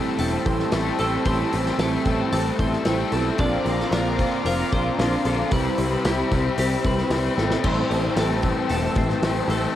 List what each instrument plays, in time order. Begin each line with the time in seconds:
Already playing: clean electric guitar A2 E3 G3 C4 E4 A4 C5, overdriven electric guitar A3 C4 E4 A4, analog synth pad C4 G5 A5 E6
0.19 picked electric bass E1, clean electric guitar A4, open hi-hat
0.45 picked electric bass A1, clean electric guitar G3 C4 E4 C5, kick, open hi-hat
0.60 snare
0.71 picked electric bass A1, clean electric guitar E3 G3 C4 E4, overdriven electric guitar A3, snare, open hi-hat
0.75 overdriven electric guitar A4
0.99 picked electric bass A1, clean electric guitar G3 C4 E4 A4, overdriven electric guitar A3 A4, open hi-hat
1.25 picked electric bass A1, clean electric guitar A2 E3 G3 C4 E4 C5, overdriven electric guitar A3 A4, kick, open hi-hat
1.52 picked electric bass A1, clean electric guitar G3 C4 E4, open hi-hat
1.66 snare
1.79 picked electric bass A1, clean electric guitar A2 E3 G3 C4 E4 A4, overdriven electric guitar A3 A4, snare, open hi-hat
2.05 picked electric bass A1, overdriven electric guitar A3 C4 E4 A4, kick, open hi-hat
2.33 picked electric bass A1, clean electric guitar A4, open hi-hat
2.58 picked electric bass A1, clean electric guitar G3 C4 E4 C5, kick, open hi-hat
2.73 snare
2.84 picked electric bass A1, clean electric guitar E3 G3 C4 E4, overdriven electric guitar A3 A4, snare, open hi-hat
3.11 picked electric bass B1, clean electric guitar G3 C4 E4 A4, overdriven electric guitar A3 A4, open hi-hat
3.37 picked electric bass A#1, clean electric guitar A#2 D3 F3 C4 D4 D5, overdriven electric guitar A#3 F4, analog synth pad F5 A#5 D6, kick, open hi-hat
3.64 picked electric bass A#1, clean electric guitar F3 C4 D4, open hi-hat
3.80 snare
3.91 picked electric bass A#1, clean electric guitar A#2 D3 F3 C4 D4 A#4, overdriven electric guitar A#3 F4, snare, open hi-hat
4.18 overdriven electric guitar F3 A#3 F4, kick, open hi-hat
4.45 picked electric bass F1, clean electric guitar A#4, open hi-hat
4.71 picked electric bass A#1, clean electric guitar F3 C4 D4 C5, kick, open hi-hat
4.97 picked electric bass A#1, clean electric guitar D3 F3 C4 D4, overdriven electric guitar A#3 F4, snare, open hi-hat
5.24 picked electric bass A#1, clean electric guitar F3 C4 D4 A4, overdriven electric guitar A#3 F4, open hi-hat
5.51 picked electric bass C2, clean electric guitar C3 G3 E4 B4, overdriven electric guitar C4, analog synth pad G5 B5 E6, kick, open hi-hat
5.78 picked electric bass C2, clean electric guitar G3 E4, open hi-hat
6.04 picked electric bass C2, clean electric guitar C3 G3 E4 G4, overdriven electric guitar C4, snare, open hi-hat
6.31 picked electric bass C2, overdriven electric guitar G3 C4 E4, kick, open hi-hat
6.58 picked electric bass C2, clean electric guitar G4, open hi-hat
6.84 picked electric bass C2, clean electric guitar G3 E4 B4, kick, open hi-hat
6.98 snare
7.10 picked electric bass C2, clean electric guitar C3 G3 E4, overdriven electric guitar C4, snare, open hi-hat
7.36 picked electric bass G#1, clean electric guitar G3 B3 E4 A4, overdriven electric guitar C4, snare
7.51 snare
7.63 picked electric bass A1, clean electric guitar A2 E3 G3 C4 E4 C5, overdriven electric guitar A3, analog synth pad A5, kick, crash
7.89 picked electric bass A1, clean electric guitar G3 C4 E4, open hi-hat
8.16 picked electric bass A1, clean electric guitar A2 E3 G3 C4 E4 A4, overdriven electric guitar A3, snare, open hi-hat
8.42 overdriven electric guitar C4 E4, kick, open hi-hat
8.47 overdriven electric guitar A3
8.69 picked electric bass E1, clean electric guitar A4, open hi-hat
8.95 picked electric bass A1, clean electric guitar G3 C4 E4 C5, kick, open hi-hat
9.10 snare
9.21 picked electric bass A1, clean electric guitar E3 G3 C4 E4, overdriven electric guitar A3, snare, open hi-hat
9.47 picked electric bass A1, clean electric guitar G3 C4 E4 A4, open hi-hat
9.52 overdriven electric guitar A3